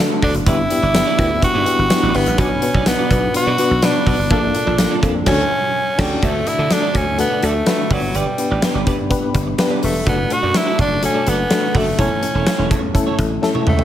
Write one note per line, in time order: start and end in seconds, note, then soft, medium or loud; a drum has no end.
0.00 0.49 D3 medium
0.00 0.22 A3 loud
0.00 0.22 D4 medium
0.00 0.23 F#4 medium
0.00 0.23 A4 loud
0.11 muted clean electric guitar stroke soft
0.22 0.32 D2 medium
0.22 0.44 A3 medium
0.22 0.44 D4 medium
0.22 0.34 D4 medium
0.22 0.35 F#4 medium
0.22 0.44 F#4 medium
0.22 0.34 A4 medium
0.22 0.44 A4 medium
0.22 0.33 D5 medium
0.22 kick medium
0.22 open hi-hat medium
0.35 0.44 F#1 medium
0.35 muted clean electric guitar stroke soft
0.35 closed hi-hat medium
0.46 0.65 G1 loud
0.46 1.15 G2 medium
0.46 0.68 B3 loud
0.46 0.68 D4 medium
0.46 0.59 E4 medium
0.46 0.68 E4 medium
0.46 1.39 E4 loud
0.46 0.68 G4 loud
0.46 0.58 B4 medium
0.46 0.57 D5 loud
0.46 kick loud
0.46 closed hi-hat medium
0.58 muted clean electric guitar stroke soft
0.70 0.92 B3 medium
0.70 0.92 D4 medium
0.70 0.92 E4 medium
0.70 0.92 G4 medium
0.70 muted clean electric guitar stroke soft
0.70 closed hi-hat medium
0.82 1.01 G1 loud
0.82 0.93 E4 soft
0.82 0.93 B4 medium
0.82 0.93 D5 medium
0.94 1.16 B3 medium
0.94 1.16 D4 medium
0.94 1.16 E4 medium
0.94 1.16 G4 medium
0.94 muted clean electric guitar stroke soft
0.94 snare loud
0.94 closed hi-hat medium
0.94 tambourine medium
1.06 1.17 E4 medium
1.06 1.18 B4 medium
1.06 1.18 D5 medium
1.18 1.37 D2 medium
1.18 1.40 B3 medium
1.18 1.40 D4 medium
1.18 1.29 E4 medium
1.18 1.40 E4 medium
1.18 1.40 G4 loud
1.18 1.29 B4 medium
1.18 1.29 D5 medium
1.18 kick loud
1.18 closed hi-hat medium
1.31 muted clean electric guitar stroke soft
1.42 1.64 B3 medium
1.42 1.64 D4 medium
1.42 1.64 E4 medium
1.42 2.17 F#4 loud
1.42 1.64 G4 medium
1.42 muted clean electric guitar stroke soft
1.42 kick loud
1.42 closed hi-hat medium
1.54 1.64 G2 loud
1.54 1.65 E4 medium
1.54 1.66 B4 medium
1.54 1.66 D5 loud
1.66 1.87 B3 loud
1.66 1.88 D4 medium
1.66 1.88 E4 medium
1.66 1.88 G4 loud
1.66 muted clean electric guitar stroke medium
1.66 closed hi-hat medium
1.78 1.88 G1 medium
1.78 muted clean electric guitar stroke soft
1.90 2.11 B3 loud
1.90 2.12 D4 medium
1.90 2.12 E4 medium
1.90 2.12 G4 loud
1.90 muted clean electric guitar stroke soft
1.90 snare loud
1.90 closed hi-hat medium
1.90 tambourine medium
2.02 2.12 A1 medium
2.02 2.13 E4 medium
2.02 2.14 B4 medium
2.02 2.14 D5 medium
2.14 2.24 G1 medium
2.14 2.35 B3 medium
2.14 2.42 B3 loud
2.14 2.36 D4 medium
2.14 2.36 E4 medium
2.14 2.36 G4 medium
2.14 muted clean electric guitar stroke soft
2.14 open hi-hat medium
2.26 2.36 A1 medium
2.26 muted clean electric guitar stroke soft
2.26 closed hi-hat medium
2.38 2.57 B1 loud
2.38 3.07 B2 medium
2.38 2.59 B3 loud
2.38 2.89 C#4 loud
2.38 2.60 D4 medium
2.38 2.51 F#4 medium
2.38 2.60 F#4 medium
2.38 2.51 B4 medium
2.38 2.60 B4 loud
2.38 2.50 D5 loud
2.38 kick loud
2.38 closed hi-hat medium
2.51 muted clean electric guitar stroke soft
2.62 2.84 B3 medium
2.62 2.84 D4 medium
2.62 2.84 F#4 medium
2.62 2.84 B4 medium
2.62 muted clean electric guitar stroke medium
2.62 closed hi-hat medium
2.74 2.93 B1 loud
2.74 2.85 F#4 medium
2.74 2.85 B4 medium
2.74 2.85 D5 medium
2.74 kick medium
2.86 3.08 B3 medium
2.86 3.35 B3 medium
2.86 3.08 D4 medium
2.86 3.08 F#4 medium
2.86 3.08 B4 medium
2.86 muted clean electric guitar stroke soft
2.86 snare loud
2.86 closed hi-hat medium
2.86 tambourine medium
2.99 3.10 F#4 medium
2.99 3.10 B4 medium
2.99 3.10 D5 medium
3.10 3.29 B1 loud
3.10 3.32 B3 medium
3.10 3.32 D4 medium
3.10 3.21 F#4 medium
3.10 3.32 F#4 medium
3.10 3.21 B4 medium
3.10 3.32 B4 medium
3.10 3.21 D5 medium
3.10 kick loud
3.10 closed hi-hat medium
3.23 muted clean electric guitar stroke soft
3.34 3.56 B3 medium
3.34 3.56 D4 medium
3.34 3.56 F#4 medium
3.34 3.86 F#4 loud
3.34 3.56 B4 medium
3.34 muted slap bass stroke soft
3.34 muted clean electric guitar stroke soft
3.34 closed hi-hat loud
3.46 3.56 B2 loud
3.46 3.57 F#4 medium
3.46 3.57 B4 medium
3.46 3.57 D5 medium
3.58 3.80 B3 loud
3.58 3.80 D4 medium
3.58 3.71 F#4 medium
3.58 3.80 F#4 medium
3.58 3.70 B4 loud
3.58 3.80 B4 loud
3.58 3.70 D5 loud
3.58 closed hi-hat medium
3.71 3.80 B1 medium
3.71 muted clean electric guitar stroke soft
3.82 3.92 B2 loud
3.82 4.04 B3 loud
3.82 4.04 D4 medium
3.82 4.31 D4 loud
3.82 4.04 F#4 medium
3.82 4.04 B4 loud
3.82 muted clean electric guitar stroke soft
3.82 snare loud
3.82 closed hi-hat medium
3.82 tambourine medium
3.95 muted clean electric guitar stroke soft
4.06 4.16 B1 medium
4.06 4.28 B3 medium
4.06 4.28 D4 medium
4.06 4.20 F#4 medium
4.06 4.28 F#4 medium
4.06 4.18 B4 loud
4.06 4.28 B4 medium
4.06 4.18 D5 loud
4.06 kick medium
4.06 open hi-hat medium
4.19 4.28 G1 medium
4.19 muted clean electric guitar stroke soft
4.30 4.49 A#1 loud
4.30 4.99 A#2 medium
4.30 4.52 A#3 loud
4.30 4.52 D4 medium
4.30 4.96 D4 medium
4.30 4.44 F4 medium
4.30 4.52 F4 medium
4.30 4.42 A4 loud
4.30 4.52 A4 loud
4.30 4.41 D5 loud
4.30 kick loud
4.30 closed hi-hat medium
4.42 muted clean electric guitar stroke soft
4.54 4.76 A#3 medium
4.54 4.76 D4 medium
4.54 4.76 F4 medium
4.54 4.77 A4 medium
4.54 muted clean electric guitar stroke soft
4.54 closed hi-hat medium
4.66 4.85 A#1 loud
4.66 4.77 F4 medium
4.66 4.77 A4 medium
4.66 4.77 D5 medium
4.78 5.00 A#3 medium
4.78 5.00 D4 medium
4.78 5.00 F4 medium
4.78 5.00 A4 medium
4.78 muted clean electric guitar stroke soft
4.78 snare loud
4.78 closed hi-hat medium
4.78 tambourine medium
4.91 5.02 F4 medium
4.91 5.02 A4 medium
4.91 5.03 D5 medium
5.02 5.21 F2 loud
5.02 5.24 A#3 medium
5.02 5.24 D4 medium
5.02 5.13 F4 medium
5.02 5.24 F4 medium
5.02 5.13 A4 medium
5.02 5.24 A4 loud
5.02 5.13 D5 medium
5.02 kick medium
5.02 closed hi-hat medium
5.15 muted clean electric guitar stroke soft
5.26 5.43 D2 loud
5.26 5.43 D3 loud
5.26 5.43 C#4 loud
5.26 5.95 C#4 loud
5.26 5.43 D4 loud
5.26 5.43 F#4 loud
5.26 5.44 F#4 medium
5.26 5.43 A4 loud
5.26 5.44 A4 loud
5.26 5.43 C#5 loud
5.26 kick loud
5.26 snare loud
5.26 crash medium
5.98 6.15 D2 medium
5.98 6.26 G3 medium
5.98 6.15 C#4 loud
5.98 6.15 D4 loud
5.98 6.15 F#4 loud
5.98 6.16 F#4 loud
5.98 6.15 A4 loud
5.98 6.15 C#5 loud
5.98 kick loud
5.98 snare loud
5.98 crash medium
6.22 6.41 D2 medium
6.22 6.91 D3 medium
6.22 6.43 A3 medium
6.22 6.50 A3 medium
6.22 6.44 D4 medium
6.22 6.35 F#4 medium
6.22 6.44 F#4 medium
6.22 6.34 A4 medium
6.22 6.44 A4 loud
6.22 6.33 D5 medium
6.22 kick loud
6.22 closed hi-hat medium
6.35 muted clean electric guitar stroke soft
6.46 6.67 A3 medium
6.46 6.68 D4 medium
6.46 6.74 E4 loud
6.46 6.68 F#4 medium
6.46 6.68 A4 medium
6.46 muted clean electric guitar stroke soft
6.46 closed hi-hat medium
6.58 6.68 D3 medium
6.58 6.69 F#4 soft
6.58 6.69 A4 medium
6.58 6.69 D5 medium
6.70 6.91 A3 medium
6.70 6.92 D4 medium
6.70 6.98 D4 medium
6.70 6.92 F#4 medium
6.70 6.92 A4 medium
6.70 muted clean electric guitar stroke soft
6.70 snare loud
6.70 closed hi-hat medium
6.82 6.93 F#4 medium
6.82 6.94 A4 medium
6.82 6.94 D5 medium
6.94 7.22 D2 medium
6.94 7.16 A3 medium
6.94 7.19 C#4 medium
6.94 7.16 D4 medium
6.94 7.05 F#4 medium
6.94 7.16 F#4 medium
6.94 7.05 A4 medium
6.94 7.16 A4 medium
6.94 7.05 D5 medium
6.94 kick medium
6.94 closed hi-hat medium
7.18 7.39 A3 medium
7.18 7.46 B3 medium
7.18 7.40 D4 medium
7.18 7.40 F#4 medium
7.18 7.40 A4 loud
7.18 muted clean electric guitar stroke soft
7.18 closed hi-hat medium
7.30 7.41 F#4 medium
7.30 7.41 A4 medium
7.30 7.41 D5 medium
7.42 7.61 D2 medium
7.42 7.64 A3 medium
7.42 7.94 A3 medium
7.42 7.64 D4 medium
7.42 7.55 F#4 medium
7.42 7.64 F#4 medium
7.42 7.54 A4 medium
7.42 7.64 A4 medium
7.42 7.53 D5 medium
7.42 closed hi-hat medium
7.54 muted clean electric guitar stroke soft
7.66 7.88 A3 medium
7.66 7.88 D4 medium
7.66 7.88 F#4 medium
7.66 7.88 B4 loud
7.66 muted clean electric guitar stroke soft
7.66 snare loud
7.66 closed hi-hat medium
7.78 muted clean electric guitar stroke soft
7.90 8.09 G1 medium
7.90 8.59 G2 medium
7.90 8.18 F#3 medium
7.90 8.33 B3 medium
7.90 8.33 D4 medium
7.90 8.03 G4 medium
7.90 8.33 G4 medium
7.90 8.02 B4 medium
7.90 8.33 B4 medium
7.90 8.01 D5 medium
7.90 kick loud
7.90 open hi-hat medium
8.02 muted clean electric guitar stroke soft
8.14 8.24 G1 loud
8.14 8.88 G3 medium
8.14 8.28 G4 medium
8.14 8.26 B4 medium
8.14 8.25 D5 medium
8.14 closed hi-hat medium
8.27 muted clean electric guitar stroke soft
8.38 8.60 B3 medium
8.38 8.60 D4 medium
8.38 8.60 G4 medium
8.38 8.60 B4 medium
8.38 muted clean electric guitar stroke soft
8.38 closed hi-hat medium
8.51 8.60 A1 medium
8.51 8.61 G4 soft
8.51 8.61 B4 medium
8.51 8.61 D5 medium
8.62 8.84 B3 medium
8.62 8.84 D4 medium
8.62 8.84 G4 medium
8.62 8.84 B4 medium
8.62 muted clean electric guitar stroke soft
8.62 snare loud
8.62 closed hi-hat medium
8.74 8.84 G1 loud
8.74 8.85 G4 medium
8.74 8.86 B4 medium
8.74 8.86 D5 medium
8.86 9.14 G2 medium
8.86 9.08 B3 medium
8.86 9.08 D4 medium
8.86 8.97 G4 medium
8.86 9.08 G4 medium
8.86 8.97 B4 medium
8.86 9.08 B4 medium
8.86 8.97 D5 medium
8.86 kick medium
8.86 closed hi-hat medium
8.98 muted clean electric guitar stroke soft
9.10 9.32 B3 loud
9.10 9.32 D4 loud
9.10 9.32 G4 loud
9.10 9.32 B4 loud
9.10 muted clean electric guitar stroke soft
9.10 kick medium
9.10 closed hi-hat medium
9.23 muted clean electric guitar stroke soft
9.34 9.53 G1 medium
9.34 9.56 B3 medium
9.34 9.56 D4 medium
9.34 9.56 G4 medium
9.34 9.56 B4 medium
9.34 kick medium
9.34 closed hi-hat medium
9.47 muted clean electric guitar stroke soft
9.58 9.80 B3 loud
9.58 9.80 D4 loud
9.58 9.80 G4 loud
9.58 9.80 B4 loud
9.58 muted clean electric guitar stroke soft
9.58 snare loud
9.58 closed hi-hat medium
9.70 9.81 G4 medium
9.70 9.81 B4 medium
9.70 9.82 D5 medium
9.82 10.01 E1 medium
9.82 10.06 A3 medium
9.82 10.04 B3 medium
9.82 10.04 D4 medium
9.82 10.04 G4 medium
9.82 10.04 B4 medium
9.82 muted clean electric guitar stroke soft
9.82 open hi-hat medium
9.94 muted clean electric guitar stroke soft
10.06 10.25 F#1 loud
10.06 10.28 A3 medium
10.06 10.34 B3 medium
10.06 10.28 D4 medium
10.06 10.19 F#4 medium
10.06 10.28 F#4 medium
10.06 10.18 A4 medium
10.06 10.28 A4 loud
10.06 10.17 D5 medium
10.06 kick loud
10.06 closed hi-hat medium
10.19 muted clean electric guitar stroke soft
10.30 10.52 A3 medium
10.30 10.52 D4 medium
10.30 10.52 F#4 medium
10.30 10.58 F#4 loud
10.30 10.52 A4 medium
10.30 muted clean electric guitar stroke soft
10.30 closed hi-hat medium
10.42 10.52 F#2 medium
10.42 10.53 F#4 medium
10.42 10.53 A4 medium
10.42 10.53 D5 medium
10.54 10.76 A3 medium
10.54 10.76 D4 medium
10.54 10.80 E4 loud
10.54 10.76 F#4 medium
10.54 10.76 A4 medium
10.54 snare loud
10.54 closed hi-hat medium
10.66 10.77 F#4 medium
10.66 10.78 A4 medium
10.66 10.78 D5 medium
10.78 11.06 F#1 medium
10.78 11.00 A3 medium
10.78 11.00 D4 medium
10.78 11.02 D4 medium
10.78 10.89 F#4 medium
10.78 11.00 F#4 medium
10.78 10.89 A4 medium
10.78 11.00 A4 medium
10.78 10.89 D5 medium
10.78 kick medium
10.78 closed hi-hat medium
10.91 muted clean electric guitar stroke soft
11.02 11.24 A3 loud
11.02 11.30 C#4 medium
11.02 11.24 D4 medium
11.02 11.24 F#4 medium
11.02 11.24 A4 loud
11.02 muted clean electric guitar stroke soft
11.02 closed hi-hat medium
11.14 11.25 F#4 medium
11.14 11.25 A4 medium
11.14 11.25 D5 medium
11.26 11.45 F#1 loud
11.26 11.48 A3 medium
11.26 11.78 B3 loud
11.26 11.48 D4 medium
11.26 11.39 F#4 medium
11.26 11.48 F#4 medium
11.26 11.38 A4 medium
11.26 11.48 A4 medium
11.26 11.37 D5 medium
11.26 closed hi-hat medium
11.38 muted clean electric guitar stroke soft
11.50 11.72 A3 loud
11.50 11.72 D4 medium
11.50 11.72 F#4 medium
11.50 11.72 A4 loud
11.50 muted clean electric guitar stroke soft
11.50 snare loud
11.50 closed hi-hat medium
11.63 muted clean electric guitar stroke soft
11.74 11.93 F#1 medium
11.74 11.96 A3 medium
11.74 12.00 A3 medium
11.74 11.96 D4 medium
11.74 11.88 F#4 medium
11.74 11.96 F#4 medium
11.74 11.86 A4 medium
11.74 11.96 A4 medium
11.74 11.85 D5 loud
11.74 kick medium
11.74 open hi-hat medium
11.87 muted clean electric guitar stroke soft
11.98 12.08 E1 loud
11.98 12.67 E3 medium
11.98 12.20 A3 medium
11.98 12.20 C#4 medium
11.98 12.68 C#4 medium
11.98 12.11 E4 medium
11.98 12.20 E4 medium
11.98 12.10 A4 medium
11.98 12.20 A4 loud
11.98 12.10 C#5 medium
11.98 kick loud
11.98 closed hi-hat medium
12.11 muted clean electric guitar stroke soft
12.22 12.43 A3 medium
12.22 12.44 C#4 medium
12.22 12.44 E4 medium
12.22 12.44 A4 medium
12.22 muted clean electric guitar stroke soft
12.22 closed hi-hat medium
12.34 12.44 E1 medium
12.34 12.45 E4 soft
12.34 12.45 A4 medium
12.34 12.45 C#5 medium
12.46 12.67 A3 medium
12.46 12.68 C#4 medium
12.46 12.68 E4 medium
12.46 12.68 A4 medium
12.46 muted clean electric guitar stroke soft
12.46 snare loud
12.46 closed hi-hat medium
12.58 12.68 E1 medium
12.58 12.69 E4 medium
12.58 12.70 A4 medium
12.58 12.70 C#5 medium
12.70 12.98 E2 loud
12.70 12.92 A3 medium
12.70 12.92 C#4 medium
12.70 12.81 E4 medium
12.70 12.92 E4 medium
12.70 12.81 A4 medium
12.70 12.92 A4 medium
12.70 12.81 C#5 medium
12.70 kick medium
12.70 closed hi-hat medium
12.82 muted clean electric guitar stroke soft
12.94 13.16 A3 loud
12.94 13.16 C#4 loud
12.94 13.16 E4 loud
12.94 13.16 A4 loud
12.94 muted clean electric guitar stroke soft
12.94 kick medium
12.94 closed hi-hat medium
13.06 13.17 E4 medium
13.06 13.18 A4 medium
13.06 13.18 C#5 medium
13.18 13.37 A1 medium
13.18 13.40 A3 medium
13.18 13.40 C#4 medium
13.18 13.40 E4 medium
13.18 13.40 A4 medium
13.18 muted clean electric guitar stroke soft
13.18 kick medium
13.18 closed hi-hat medium
13.31 muted clean electric guitar stroke soft
13.42 13.64 A3 loud
13.42 13.64 C#4 loud
13.42 13.64 E4 loud
13.42 13.64 A4 loud
13.42 muted clean electric guitar stroke soft
13.42 snare medium
13.54 13.65 E4 medium
13.54 13.65 A4 medium
13.54 13.66 C#5 medium
13.54 high tom medium
13.66 13.84 C#2 medium
13.66 13.84 A3 medium
13.66 13.84 C#4 medium
13.66 13.84 E4 medium
13.66 13.84 A4 medium
13.66 muted clean electric guitar stroke soft
13.66 mid tom medium
13.78 muted clean electric guitar stroke soft
13.78 floor tom medium